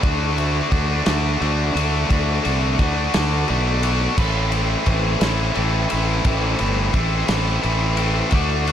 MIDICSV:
0, 0, Header, 1, 4, 480
1, 0, Start_track
1, 0, Tempo, 691244
1, 27, Time_signature, 6, 3, 24, 8
1, 6055, End_track
2, 0, Start_track
2, 0, Title_t, "Distorted electric guitar"
2, 0, Program_c, 0, 30
2, 12, Note_on_c, 0, 50, 104
2, 19, Note_on_c, 0, 57, 100
2, 22, Note_on_c, 0, 62, 96
2, 28, Note_on_c, 0, 66, 104
2, 250, Note_off_c, 0, 66, 0
2, 253, Note_on_c, 0, 66, 74
2, 263, Note_off_c, 0, 62, 0
2, 265, Note_off_c, 0, 57, 0
2, 265, Note_on_c, 0, 62, 68
2, 268, Note_on_c, 0, 57, 60
2, 491, Note_off_c, 0, 50, 0
2, 494, Note_on_c, 0, 50, 70
2, 500, Note_off_c, 0, 57, 0
2, 501, Note_off_c, 0, 62, 0
2, 503, Note_on_c, 0, 57, 69
2, 504, Note_on_c, 0, 62, 92
2, 506, Note_off_c, 0, 66, 0
2, 509, Note_on_c, 0, 66, 76
2, 724, Note_off_c, 0, 66, 0
2, 733, Note_off_c, 0, 62, 0
2, 733, Note_on_c, 0, 66, 63
2, 741, Note_off_c, 0, 57, 0
2, 741, Note_on_c, 0, 62, 64
2, 744, Note_on_c, 0, 57, 50
2, 972, Note_off_c, 0, 50, 0
2, 980, Note_on_c, 0, 50, 76
2, 982, Note_off_c, 0, 57, 0
2, 984, Note_off_c, 0, 66, 0
2, 985, Note_off_c, 0, 62, 0
2, 985, Note_on_c, 0, 57, 75
2, 992, Note_on_c, 0, 66, 78
2, 993, Note_on_c, 0, 62, 77
2, 1204, Note_off_c, 0, 66, 0
2, 1213, Note_on_c, 0, 66, 76
2, 1218, Note_off_c, 0, 62, 0
2, 1226, Note_off_c, 0, 57, 0
2, 1226, Note_on_c, 0, 62, 68
2, 1229, Note_on_c, 0, 57, 66
2, 1446, Note_off_c, 0, 50, 0
2, 1454, Note_on_c, 0, 50, 85
2, 1455, Note_off_c, 0, 57, 0
2, 1455, Note_off_c, 0, 62, 0
2, 1458, Note_on_c, 0, 57, 108
2, 1461, Note_off_c, 0, 66, 0
2, 1463, Note_on_c, 0, 62, 88
2, 1470, Note_on_c, 0, 66, 105
2, 1686, Note_off_c, 0, 66, 0
2, 1694, Note_off_c, 0, 62, 0
2, 1694, Note_on_c, 0, 66, 74
2, 1703, Note_on_c, 0, 62, 70
2, 1707, Note_off_c, 0, 57, 0
2, 1709, Note_on_c, 0, 57, 54
2, 1932, Note_off_c, 0, 50, 0
2, 1938, Note_off_c, 0, 57, 0
2, 1940, Note_off_c, 0, 62, 0
2, 1940, Note_on_c, 0, 50, 70
2, 1941, Note_on_c, 0, 57, 76
2, 1943, Note_off_c, 0, 66, 0
2, 1948, Note_on_c, 0, 62, 75
2, 1951, Note_on_c, 0, 66, 85
2, 2177, Note_off_c, 0, 66, 0
2, 2183, Note_off_c, 0, 62, 0
2, 2185, Note_on_c, 0, 66, 65
2, 2191, Note_on_c, 0, 62, 75
2, 2192, Note_off_c, 0, 57, 0
2, 2195, Note_on_c, 0, 57, 52
2, 2411, Note_off_c, 0, 50, 0
2, 2419, Note_on_c, 0, 50, 65
2, 2424, Note_off_c, 0, 57, 0
2, 2426, Note_off_c, 0, 62, 0
2, 2426, Note_off_c, 0, 66, 0
2, 2427, Note_on_c, 0, 57, 76
2, 2434, Note_on_c, 0, 66, 82
2, 2435, Note_on_c, 0, 62, 81
2, 2652, Note_off_c, 0, 66, 0
2, 2660, Note_on_c, 0, 66, 75
2, 2661, Note_off_c, 0, 62, 0
2, 2669, Note_on_c, 0, 62, 61
2, 2670, Note_off_c, 0, 57, 0
2, 2672, Note_on_c, 0, 57, 60
2, 2887, Note_off_c, 0, 50, 0
2, 2888, Note_off_c, 0, 66, 0
2, 2892, Note_off_c, 0, 62, 0
2, 2899, Note_on_c, 0, 45, 94
2, 2903, Note_on_c, 0, 52, 93
2, 2904, Note_off_c, 0, 57, 0
2, 2906, Note_on_c, 0, 57, 99
2, 2912, Note_on_c, 0, 64, 114
2, 2914, Note_on_c, 0, 60, 93
2, 3134, Note_off_c, 0, 64, 0
2, 3137, Note_on_c, 0, 64, 70
2, 3146, Note_off_c, 0, 57, 0
2, 3147, Note_off_c, 0, 60, 0
2, 3149, Note_on_c, 0, 57, 57
2, 3149, Note_on_c, 0, 60, 65
2, 3371, Note_off_c, 0, 52, 0
2, 3374, Note_on_c, 0, 52, 71
2, 3381, Note_off_c, 0, 57, 0
2, 3384, Note_off_c, 0, 60, 0
2, 3384, Note_on_c, 0, 57, 65
2, 3387, Note_on_c, 0, 60, 86
2, 3388, Note_off_c, 0, 64, 0
2, 3391, Note_on_c, 0, 64, 73
2, 3607, Note_off_c, 0, 64, 0
2, 3615, Note_on_c, 0, 64, 73
2, 3617, Note_off_c, 0, 60, 0
2, 3625, Note_on_c, 0, 60, 68
2, 3628, Note_off_c, 0, 57, 0
2, 3630, Note_on_c, 0, 57, 60
2, 3842, Note_off_c, 0, 52, 0
2, 3850, Note_on_c, 0, 52, 72
2, 3853, Note_off_c, 0, 60, 0
2, 3855, Note_off_c, 0, 64, 0
2, 3856, Note_off_c, 0, 57, 0
2, 3859, Note_on_c, 0, 57, 65
2, 3862, Note_on_c, 0, 60, 76
2, 3863, Note_on_c, 0, 64, 79
2, 4090, Note_off_c, 0, 64, 0
2, 4097, Note_off_c, 0, 60, 0
2, 4098, Note_on_c, 0, 64, 89
2, 4105, Note_on_c, 0, 60, 68
2, 4108, Note_off_c, 0, 57, 0
2, 4111, Note_on_c, 0, 57, 60
2, 4334, Note_off_c, 0, 52, 0
2, 4338, Note_off_c, 0, 45, 0
2, 4340, Note_off_c, 0, 60, 0
2, 4340, Note_on_c, 0, 45, 91
2, 4343, Note_on_c, 0, 52, 91
2, 4346, Note_off_c, 0, 64, 0
2, 4347, Note_off_c, 0, 57, 0
2, 4349, Note_on_c, 0, 60, 117
2, 4350, Note_on_c, 0, 57, 86
2, 4355, Note_on_c, 0, 64, 114
2, 4570, Note_off_c, 0, 64, 0
2, 4577, Note_off_c, 0, 60, 0
2, 4579, Note_on_c, 0, 64, 72
2, 4586, Note_on_c, 0, 60, 62
2, 4589, Note_off_c, 0, 57, 0
2, 4592, Note_on_c, 0, 57, 52
2, 4806, Note_off_c, 0, 52, 0
2, 4814, Note_on_c, 0, 52, 71
2, 4818, Note_off_c, 0, 60, 0
2, 4819, Note_off_c, 0, 57, 0
2, 4819, Note_off_c, 0, 64, 0
2, 4822, Note_off_c, 0, 45, 0
2, 4822, Note_on_c, 0, 57, 69
2, 4826, Note_on_c, 0, 60, 88
2, 4827, Note_on_c, 0, 64, 86
2, 5043, Note_off_c, 0, 64, 0
2, 5052, Note_off_c, 0, 60, 0
2, 5052, Note_on_c, 0, 64, 74
2, 5060, Note_on_c, 0, 60, 66
2, 5063, Note_off_c, 0, 57, 0
2, 5066, Note_on_c, 0, 57, 53
2, 5287, Note_off_c, 0, 52, 0
2, 5292, Note_off_c, 0, 60, 0
2, 5295, Note_on_c, 0, 52, 70
2, 5296, Note_off_c, 0, 57, 0
2, 5299, Note_on_c, 0, 57, 85
2, 5300, Note_off_c, 0, 64, 0
2, 5300, Note_on_c, 0, 60, 82
2, 5308, Note_on_c, 0, 64, 79
2, 5526, Note_off_c, 0, 64, 0
2, 5534, Note_off_c, 0, 60, 0
2, 5535, Note_on_c, 0, 64, 85
2, 5543, Note_on_c, 0, 60, 80
2, 5544, Note_off_c, 0, 57, 0
2, 5547, Note_on_c, 0, 57, 66
2, 5765, Note_off_c, 0, 64, 0
2, 5766, Note_off_c, 0, 52, 0
2, 5769, Note_off_c, 0, 60, 0
2, 5783, Note_on_c, 0, 50, 94
2, 5786, Note_off_c, 0, 57, 0
2, 5789, Note_on_c, 0, 57, 98
2, 5796, Note_on_c, 0, 62, 108
2, 5796, Note_on_c, 0, 66, 106
2, 6019, Note_off_c, 0, 66, 0
2, 6027, Note_on_c, 0, 66, 77
2, 6028, Note_off_c, 0, 62, 0
2, 6040, Note_off_c, 0, 57, 0
2, 6055, Note_off_c, 0, 50, 0
2, 6055, Note_off_c, 0, 66, 0
2, 6055, End_track
3, 0, Start_track
3, 0, Title_t, "Fingered electric bass"
3, 0, Program_c, 1, 33
3, 23, Note_on_c, 1, 38, 89
3, 420, Note_off_c, 1, 38, 0
3, 498, Note_on_c, 1, 38, 95
3, 700, Note_off_c, 1, 38, 0
3, 745, Note_on_c, 1, 38, 91
3, 943, Note_off_c, 1, 38, 0
3, 982, Note_on_c, 1, 38, 95
3, 1182, Note_off_c, 1, 38, 0
3, 1218, Note_on_c, 1, 38, 86
3, 1419, Note_off_c, 1, 38, 0
3, 1456, Note_on_c, 1, 38, 89
3, 1658, Note_off_c, 1, 38, 0
3, 1709, Note_on_c, 1, 36, 83
3, 1905, Note_off_c, 1, 36, 0
3, 1937, Note_on_c, 1, 38, 83
3, 2138, Note_off_c, 1, 38, 0
3, 2194, Note_on_c, 1, 38, 98
3, 2388, Note_off_c, 1, 38, 0
3, 2431, Note_on_c, 1, 35, 92
3, 2824, Note_off_c, 1, 35, 0
3, 2901, Note_on_c, 1, 33, 92
3, 3298, Note_off_c, 1, 33, 0
3, 3381, Note_on_c, 1, 33, 93
3, 3580, Note_off_c, 1, 33, 0
3, 3619, Note_on_c, 1, 33, 92
3, 3819, Note_off_c, 1, 33, 0
3, 3868, Note_on_c, 1, 33, 90
3, 4064, Note_off_c, 1, 33, 0
3, 4117, Note_on_c, 1, 33, 92
3, 4309, Note_off_c, 1, 33, 0
3, 4338, Note_on_c, 1, 33, 80
3, 4539, Note_off_c, 1, 33, 0
3, 4587, Note_on_c, 1, 31, 88
3, 4784, Note_off_c, 1, 31, 0
3, 4817, Note_on_c, 1, 33, 102
3, 5018, Note_off_c, 1, 33, 0
3, 5060, Note_on_c, 1, 33, 97
3, 5260, Note_off_c, 1, 33, 0
3, 5308, Note_on_c, 1, 33, 86
3, 5703, Note_off_c, 1, 33, 0
3, 5782, Note_on_c, 1, 38, 89
3, 6055, Note_off_c, 1, 38, 0
3, 6055, End_track
4, 0, Start_track
4, 0, Title_t, "Drums"
4, 23, Note_on_c, 9, 36, 109
4, 23, Note_on_c, 9, 51, 96
4, 92, Note_off_c, 9, 51, 0
4, 93, Note_off_c, 9, 36, 0
4, 264, Note_on_c, 9, 51, 70
4, 333, Note_off_c, 9, 51, 0
4, 499, Note_on_c, 9, 51, 66
4, 500, Note_on_c, 9, 36, 78
4, 568, Note_off_c, 9, 51, 0
4, 570, Note_off_c, 9, 36, 0
4, 736, Note_on_c, 9, 51, 91
4, 740, Note_on_c, 9, 38, 121
4, 805, Note_off_c, 9, 51, 0
4, 809, Note_off_c, 9, 38, 0
4, 984, Note_on_c, 9, 51, 62
4, 1053, Note_off_c, 9, 51, 0
4, 1228, Note_on_c, 9, 51, 79
4, 1297, Note_off_c, 9, 51, 0
4, 1461, Note_on_c, 9, 36, 107
4, 1461, Note_on_c, 9, 51, 97
4, 1530, Note_off_c, 9, 51, 0
4, 1531, Note_off_c, 9, 36, 0
4, 1700, Note_on_c, 9, 51, 75
4, 1769, Note_off_c, 9, 51, 0
4, 1937, Note_on_c, 9, 51, 70
4, 1939, Note_on_c, 9, 36, 84
4, 2007, Note_off_c, 9, 51, 0
4, 2009, Note_off_c, 9, 36, 0
4, 2179, Note_on_c, 9, 51, 100
4, 2183, Note_on_c, 9, 38, 118
4, 2249, Note_off_c, 9, 51, 0
4, 2253, Note_off_c, 9, 38, 0
4, 2415, Note_on_c, 9, 51, 70
4, 2485, Note_off_c, 9, 51, 0
4, 2660, Note_on_c, 9, 51, 89
4, 2729, Note_off_c, 9, 51, 0
4, 2900, Note_on_c, 9, 49, 100
4, 2902, Note_on_c, 9, 36, 111
4, 2970, Note_off_c, 9, 49, 0
4, 2971, Note_off_c, 9, 36, 0
4, 3137, Note_on_c, 9, 51, 73
4, 3206, Note_off_c, 9, 51, 0
4, 3375, Note_on_c, 9, 51, 82
4, 3381, Note_on_c, 9, 36, 80
4, 3444, Note_off_c, 9, 51, 0
4, 3450, Note_off_c, 9, 36, 0
4, 3618, Note_on_c, 9, 51, 95
4, 3622, Note_on_c, 9, 38, 107
4, 3687, Note_off_c, 9, 51, 0
4, 3692, Note_off_c, 9, 38, 0
4, 3856, Note_on_c, 9, 51, 80
4, 3926, Note_off_c, 9, 51, 0
4, 4096, Note_on_c, 9, 51, 84
4, 4165, Note_off_c, 9, 51, 0
4, 4337, Note_on_c, 9, 51, 100
4, 4340, Note_on_c, 9, 36, 100
4, 4406, Note_off_c, 9, 51, 0
4, 4410, Note_off_c, 9, 36, 0
4, 4574, Note_on_c, 9, 51, 71
4, 4643, Note_off_c, 9, 51, 0
4, 4816, Note_on_c, 9, 51, 72
4, 4819, Note_on_c, 9, 36, 73
4, 4885, Note_off_c, 9, 51, 0
4, 4889, Note_off_c, 9, 36, 0
4, 5057, Note_on_c, 9, 51, 102
4, 5061, Note_on_c, 9, 38, 112
4, 5127, Note_off_c, 9, 51, 0
4, 5131, Note_off_c, 9, 38, 0
4, 5300, Note_on_c, 9, 51, 71
4, 5370, Note_off_c, 9, 51, 0
4, 5534, Note_on_c, 9, 51, 74
4, 5603, Note_off_c, 9, 51, 0
4, 5768, Note_on_c, 9, 51, 92
4, 5780, Note_on_c, 9, 36, 102
4, 5838, Note_off_c, 9, 51, 0
4, 5849, Note_off_c, 9, 36, 0
4, 6023, Note_on_c, 9, 51, 71
4, 6055, Note_off_c, 9, 51, 0
4, 6055, End_track
0, 0, End_of_file